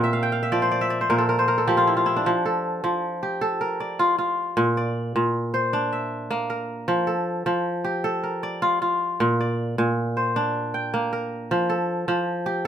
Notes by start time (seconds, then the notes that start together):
Already playing: A#2 C4 G4 A#4
0.04 E5
0.13 F5
0.23 G5
0.32 F5
0.43 E5
0.52 F3 D5
0.62 C5
0.71 D5
0.81 E5
0.90 D5
1.01 C5
1.10 A#2 A#4
1.18 A4
1.29 A#4
1.39 C5
1.48 A#4
1.58 A4
1.67 F3 G4
1.77 F4
1.87 E4
1.97 F4
2.06 E4
2.16 D4
2.26 F3
2.46 A4
2.84 F3
3.23 G4
3.41 A4
3.61 A#4
3.80 D5
3.99 F4
4.18 F4
4.57 A#2
4.77 D5
5.16 A#2
5.54 C5
5.73 D4
5.93 E5
6.31 A#3
6.50 A#4
6.88 F3
7.07 A4
7.46 F3
7.84 G4
8.04 A4
8.23 A#4
8.43 D5
8.62 F4
8.82 F4
9.20 A#2
9.41 D5
9.78 A#2
10.17 C5
10.36 D4
10.74 G5
10.94 A#3
11.13 A#4
11.51 F3
11.70 A4
12.08 F3
12.46 G4